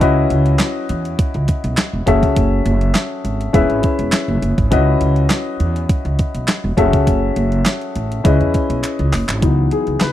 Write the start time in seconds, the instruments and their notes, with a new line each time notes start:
0.00 upright bass C#2, grand piano C#4 E4 F#4 B4 D#5, kick, closed hi-hat
0.30 upright bass C#2, closed hi-hat
0.46 closed hi-hat
0.59 snare, clap, closed hi-hat
0.89 upright bass E2, closed hi-hat
1.05 closed hi-hat
1.19 kick, closed hi-hat
1.34 upright bass C#2, closed hi-hat
1.48 kick, closed hi-hat
1.64 upright bass B1, closed hi-hat
1.77 snare, clap, closed hi-hat
1.93 upright bass E1
2.06 upright bass F#1, grand piano C#4 F#4 G#4 A4 E5, kick, closed hi-hat
2.23 upright bass C#2, kick, closed hi-hat
2.36 upright bass F#1, kick, closed hi-hat
2.65 upright bass F#1, closed hi-hat
2.81 closed hi-hat
2.95 snare, clap, closed hi-hat
3.25 upright bass G#1, closed hi-hat
3.41 closed hi-hat
3.53 upright bass E1, grand piano C#4 E4 G#4 B4 E5, kick, closed hi-hat
3.70 upright bass G#1, closed hi-hat
3.83 kick, closed hi-hat
3.99 upright bass E1, closed hi-hat
4.12 snare, clap, closed hi-hat
4.28 upright bass F#1
4.42 upright bass F#1, closed hi-hat
4.58 upright bass G#1, kick, closed hi-hat
4.71 upright bass C#2, grand piano C#4 E4 F#4 B4 D#5, kick, closed hi-hat
5.01 upright bass C#2, closed hi-hat
5.16 closed hi-hat
5.30 snare, clap, closed hi-hat
5.60 upright bass E2, closed hi-hat
5.76 closed hi-hat
5.89 kick, closed hi-hat
6.05 upright bass C#2, closed hi-hat
6.19 kick, closed hi-hat
6.35 upright bass B1, closed hi-hat
6.48 snare, clap, closed hi-hat
6.64 upright bass E1
6.77 upright bass F#1, grand piano C#4 F#4 G#4 A4 E5, kick, closed hi-hat
6.93 upright bass C#2, kick, closed hi-hat
7.07 upright bass F#1, kick, closed hi-hat
7.36 upright bass F#1, closed hi-hat
7.52 closed hi-hat
7.65 snare, clap, closed hi-hat
7.81 closed hi-hat
7.96 upright bass A1, closed hi-hat
8.12 closed hi-hat
8.24 upright bass C#2, grand piano C#4 E4 G#4 B4 D#5, kick, closed hi-hat
8.40 upright bass E2, closed hi-hat
8.54 kick, closed hi-hat
8.70 upright bass B1, closed hi-hat
8.83 clap, closed hi-hat
8.99 upright bass C#2, closed hi-hat
9.13 upright bass F#1, clap, open hi-hat
9.29 upright bass G#1, clap, closed hi-hat
9.42 upright bass C#2, grand piano E3 F#3 B3 D#4, kick, closed hi-hat
9.71 grand piano G#4, closed hi-hat
9.87 upright bass C#2, closed hi-hat
10.00 upright bass C#2, grand piano B4, snare, clap, closed hi-hat